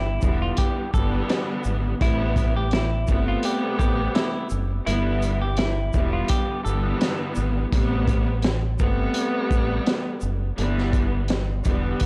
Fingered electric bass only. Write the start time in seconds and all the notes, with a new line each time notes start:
Already playing: G1
0.23 E1
0.94 G1
1.66 G#1
2.01 A1
3.09 G1
3.80 A1
4.52 F#1
4.87 G1
5.94 E1
6.66 G1
7.37 G#1
7.73 A1
8.80 G1
9.51 A1
10.23 F#1
10.58 G1
11.66 E1